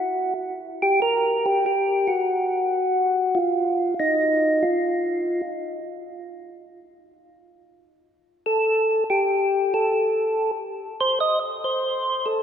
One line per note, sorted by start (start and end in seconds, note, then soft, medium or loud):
0.00 0.34 F#4 medium
0.82 1.00 G4 medium
1.02 1.46 A#4 loud
1.46 1.65 G4 medium
1.66 2.10 G4 medium
2.07 3.38 F#4 medium
3.35 3.94 F4 loud
4.00 4.64 D#4 loud
4.63 5.41 F4 medium
8.46 9.04 A4 loud
9.10 9.73 G4 loud
9.74 10.51 A4 medium
11.01 11.19 C5 loud
11.20 11.39 D#5 loud
11.64 12.28 C5 medium
12.26 12.43 A4 medium